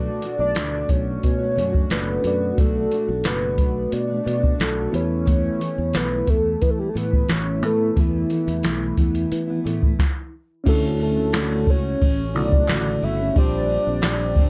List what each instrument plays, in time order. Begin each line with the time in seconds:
Already playing: steel-string acoustic guitar B2 A3 D4 F#4, reed electric piano D4 F#4 A4 B4, soft synth lead D5
0.21 steel-string acoustic guitar B2 A3 D4, closed hi-hat
0.25 steel-string acoustic guitar F#4
0.37 fingered electric bass B1, steel-string acoustic guitar A3 D4 F#4, soft synth lead D5
0.55 fingered electric bass D2, steel-string acoustic guitar B2 A3 D4 F#4, snare, closed hi-hat
0.88 fingered electric bass B1, steel-string acoustic guitar B2 A3 D4 F#4, soft synth lead C#5, kick, closed hi-hat
1.23 fingered electric bass B2, kick, closed hi-hat
1.38 steel-string acoustic guitar D4 F#4
1.43 steel-string acoustic guitar A3
1.55 fingered electric bass F#2, steel-string acoustic guitar B2 A3 D4, closed hi-hat
1.59 steel-string acoustic guitar F#4
1.72 steel-string acoustic guitar A3 D4 F#4, kick
1.90 fingered electric bass F#1, steel-string acoustic guitar B2 A3 D4 F#4, soft synth lead B4, snare, closed hi-hat
2.22 fingered electric bass F#2, steel-string acoustic guitar B2 A3, reed electric piano D4 F#4 A4, closed hi-hat
2.26 steel-string acoustic guitar D4 F#4, reed electric piano D5
2.57 fingered electric bass B1, steel-string acoustic guitar B2 A3 D4 F#4, soft synth lead A4, kick, closed hi-hat
2.91 steel-string acoustic guitar B2 A3 D4 F#4, closed hi-hat
3.07 fingered electric bass B1, steel-string acoustic guitar A3 D4 F#4
3.24 fingered electric bass F#1, steel-string acoustic guitar B2 A3 D4 F#4, soft synth lead B4, snare, closed hi-hat
3.58 fingered electric bass B1, steel-string acoustic guitar B2 A3 D4 F#4, kick, closed hi-hat
3.92 fingered electric bass B2, soft synth lead D5, closed hi-hat
4.07 steel-string acoustic guitar D4 F#4
4.11 steel-string acoustic guitar A3
4.24 steel-string acoustic guitar B2 A3 D4 F#4, fingered electric bass B2, closed hi-hat
4.40 steel-string acoustic guitar D4 F#4, kick
4.44 steel-string acoustic guitar A3
4.58 fingered electric bass B1, steel-string acoustic guitar B2 A3 D4 F#4, soft synth lead A4, snare, closed hi-hat
4.91 fingered electric bass E2, steel-string acoustic guitar E3 A3 B3, reed electric piano B3 E4 G4, soft synth lead C#5, closed hi-hat
4.96 steel-string acoustic guitar E4, reed electric piano B4
5.01 reed electric piano A4
5.25 steel-string acoustic guitar E3 A3 B3 E4, kick, closed hi-hat
5.59 steel-string acoustic guitar E3 A3 B3, closed hi-hat
5.63 steel-string acoustic guitar E4
5.75 fingered electric bass E2, steel-string acoustic guitar B3 E4
5.80 steel-string acoustic guitar A3
5.93 fingered electric bass B1, steel-string acoustic guitar E3 A3 B3 E4, soft synth lead B4, snare, closed hi-hat
6.26 fingered electric bass E2, steel-string acoustic guitar E3 A3 B3, soft synth lead A4, kick, closed hi-hat
6.30 steel-string acoustic guitar E4
6.61 fingered electric bass E3, soft synth lead B4, kick, closed hi-hat
6.70 soft synth lead A4
6.77 steel-string acoustic guitar B3 E4, soft synth lead G4
6.81 steel-string acoustic guitar A3
6.89 soft synth lead A4
6.94 fingered electric bass A2, steel-string acoustic guitar E3 A3 B3 E4, soft synth lead B4, closed hi-hat
7.11 steel-string acoustic guitar B3 E4, kick
7.15 steel-string acoustic guitar A3
7.29 fingered electric bass A1, steel-string acoustic guitar E3 A3 B3 E4, soft synth lead C#5, snare, closed hi-hat
7.61 fingered electric bass A2, steel-string acoustic guitar E3 A3, reed electric piano B3 E4 A4, soft synth lead A4, closed hi-hat
7.66 steel-string acoustic guitar B3 E4, reed electric piano B4
7.96 fingered electric bass E2, steel-string acoustic guitar E3 A3 B3 E4, soft synth lead E4, kick, closed hi-hat
8.29 steel-string acoustic guitar E3 A3 B3, closed hi-hat
8.34 steel-string acoustic guitar E4
8.46 fingered electric bass E2, steel-string acoustic guitar A3 B3 E4, closed hi-hat
8.63 fingered electric bass B1, steel-string acoustic guitar E3 A3 B3 E4, snare, closed hi-hat
8.97 fingered electric bass E2, steel-string acoustic guitar E3 A3 B3, kick, closed hi-hat
9.01 steel-string acoustic guitar E4
9.15 closed hi-hat
9.32 fingered electric bass E3, closed hi-hat
9.47 steel-string acoustic guitar B3 E4
9.51 steel-string acoustic guitar A3
9.64 fingered electric bass A2, steel-string acoustic guitar E3 A3 B3, closed hi-hat
9.68 steel-string acoustic guitar E4
9.81 steel-string acoustic guitar A3 B3 E4, kick
9.99 kick, snare
10.64 fingered electric bass D2, steel-string acoustic guitar D3 A3 C#4, reed electric piano C#4 E4 F#4, soft synth lead A4, kick, crash, ride
10.68 steel-string acoustic guitar F#4, reed electric piano A4
11.00 soft synth lead A4, ride
11.16 steel-string acoustic guitar C#4 F#4
11.20 steel-string acoustic guitar A3
11.33 steel-string acoustic guitar D3 A3 C#4 F#4, snare, clap, ride
11.67 fingered electric bass C#2, steel-string acoustic guitar A3 C#4, soft synth lead C#5, kick, ride
11.71 steel-string acoustic guitar F#4
12.02 fingered electric bass A1, kick, ride
12.33 fingered electric bass B1, reed electric piano C#3 E4 F#4 A4, steel-string acoustic guitar D3 A3 C#4, soft synth lead D5, ride
12.38 steel-string acoustic guitar F#4
12.51 steel-string acoustic guitar C#4 F#4, kick
12.55 steel-string acoustic guitar A3
12.68 fingered electric bass A1, steel-string acoustic guitar D3 A3 F#4, snare, clap, ride
13.01 fingered electric bass G1, steel-string acoustic guitar D3 A3 C#4 F#4, soft synth lead E5, ride
13.19 steel-string acoustic guitar A3 C#4 F#4
13.34 fingered electric bass A#1, steel-string acoustic guitar A#2 G3 C4, reed electric piano D4 F4 G4, kick, ride
13.38 steel-string acoustic guitar D4, reed electric piano C5, soft synth lead D5
13.69 ride
13.86 fingered electric bass A#1, steel-string acoustic guitar C4 D4
13.90 steel-string acoustic guitar G3
14.01 steel-string acoustic guitar A#2 G3 C4, snare, clap, ride
14.06 steel-string acoustic guitar D4
14.36 fingered electric bass G1, steel-string acoustic guitar A#2 G3 C4, kick, ride
14.40 steel-string acoustic guitar D4